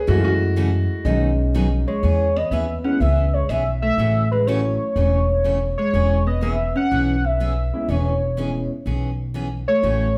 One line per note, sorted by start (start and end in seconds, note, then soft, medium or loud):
0.07 0.86 F#2 medium
0.07 0.31 C#3 medium
0.07 0.31 E3 medium
0.07 1.01 G#3 medium
0.07 0.31 A3 medium
0.07 1.02 A3 medium
0.07 0.31 C#4 medium
0.07 1.02 E4 medium
0.07 0.31 F#4 medium
0.07 0.23 F#4 loud
0.20 0.26 F4 medium
0.24 1.19 F#4 loud
0.56 0.69 C#3 medium
0.56 0.69 E3 medium
0.56 0.69 A3 medium
0.56 0.69 C#4 medium
0.56 0.69 F#4 loud
1.04 1.83 B1 medium
1.04 1.29 B2 medium
1.04 1.29 D#3 medium
1.04 1.29 F#3 medium
1.04 1.83 G#3 medium
1.04 1.29 B3 medium
1.04 1.83 C#4 soft
1.04 1.84 D#4 medium
1.04 1.29 D#4 medium
1.04 1.30 G#4 medium
1.54 1.67 B2 medium
1.54 1.67 D#3 medium
1.54 1.67 F#3 medium
1.54 1.67 B3 medium
1.54 1.67 D#4 medium
1.54 1.67 G#4 medium
1.87 2.36 G#3 medium
1.87 2.38 C#5 loud
2.03 2.42 E2 medium
2.03 2.26 E3 medium
2.03 2.27 B3 medium
2.03 2.27 C#4 medium
2.03 2.27 G#4 medium
2.36 2.50 B3 medium
2.36 2.53 D#5 loud
2.51 2.93 D#2 medium
2.51 2.64 E3 medium
2.51 2.84 B3 medium
2.51 2.64 B3 medium
2.51 2.65 C#4 medium
2.51 2.65 G#4 medium
2.51 2.84 E5 loud
2.84 2.99 G#3 medium
2.84 2.99 B3 medium
2.84 3.00 C#4 medium
2.84 2.99 C#4 medium
2.84 2.99 E4 medium
2.84 3.02 F#5 loud
3.00 3.42 C#2 medium
3.00 3.24 E3 medium
3.00 3.34 B3 medium
3.00 3.24 B3 medium
3.00 3.24 C#4 medium
3.00 3.25 G#4 medium
3.00 3.35 E5 loud
3.33 3.49 G#3 medium
3.33 3.51 C#5 loud
3.49 3.91 B1 medium
3.49 3.62 E3 medium
3.49 3.82 B3 medium
3.49 3.62 B3 medium
3.49 3.62 C#4 medium
3.49 3.62 G#4 medium
3.49 3.82 E5 loud
3.82 4.28 A3 medium
3.82 4.28 E5 loud
3.98 4.76 A1 medium
3.98 4.22 C#3 medium
3.98 4.22 E3 medium
3.98 4.22 A3 medium
3.98 4.22 C#4 medium
3.98 4.22 F#4 medium
4.31 4.47 G#3 medium
4.31 4.48 B4 medium
4.46 4.60 C#3 medium
4.46 4.60 E3 medium
4.46 4.77 F#3 medium
4.46 4.77 A3 soft
4.46 5.78 A3 medium
4.46 4.60 A3 medium
4.46 4.77 C#4 soft
4.46 4.60 C#4 medium
4.46 4.77 E4 medium
4.46 4.60 F#4 medium
4.46 5.77 C#5 loud
4.96 5.74 E1 medium
4.96 5.19 C#3 medium
4.96 5.20 E3 medium
4.96 5.20 A3 medium
4.96 5.20 C#4 medium
4.96 5.20 F#4 medium
5.44 5.57 C#3 medium
5.44 5.57 E3 medium
5.44 5.57 A3 medium
5.44 5.57 C#4 medium
5.44 5.58 F#4 medium
5.78 6.24 G#3 medium
5.78 6.23 C#5 loud
5.93 6.71 E1 medium
5.93 6.17 E3 medium
5.93 6.17 B3 medium
5.93 6.17 C#4 medium
5.93 6.18 G#4 medium
6.27 6.41 B3 medium
6.27 6.41 D#5 medium
6.41 6.54 E3 medium
6.41 6.55 B3 medium
6.41 6.73 B3 medium
6.41 6.55 C#4 medium
6.41 6.55 G#4 medium
6.41 6.74 E5 loud
6.76 7.24 C#4 medium
6.76 7.26 F#5 loud
6.91 7.69 B1 medium
6.91 7.14 E3 medium
6.91 7.15 B3 medium
6.91 7.15 C#4 medium
6.91 7.15 G#4 medium
7.24 7.89 B3 medium
7.24 7.90 E5 loud
7.40 7.52 E3 medium
7.40 7.52 B3 medium
7.40 7.53 C#4 medium
7.40 7.53 G#4 medium
7.73 7.87 G#3 medium
7.73 7.87 B3 medium
7.73 7.87 C#4 medium
7.73 7.87 E4 medium
7.88 8.66 E1 medium
7.88 8.12 E3 medium
7.88 8.71 G#3 medium
7.88 8.12 B3 medium
7.88 8.12 C#4 medium
7.88 8.13 G#4 medium
7.88 8.71 C#5 medium
8.37 8.49 E3 medium
8.37 8.68 G#3 medium
8.37 8.50 B3 medium
8.37 8.68 B3 soft
8.37 8.50 C#4 medium
8.37 8.68 C#4 soft
8.37 8.68 E4 medium
8.37 8.50 G#4 medium
8.86 9.64 B1 medium
8.86 9.09 E3 medium
8.86 9.09 B3 medium
8.86 9.10 C#4 medium
8.86 9.10 G#4 medium
9.34 9.47 E3 medium
9.34 9.47 B3 medium
9.34 9.47 C#4 medium
9.34 9.47 G#4 medium
9.68 10.17 A3 medium
9.68 10.18 C#5 medium
9.83 10.18 A1 medium
9.83 10.06 C#3 medium
9.83 10.07 E3 medium
9.83 10.07 A3 medium
9.83 10.07 C#4 medium
9.83 10.07 F#4 medium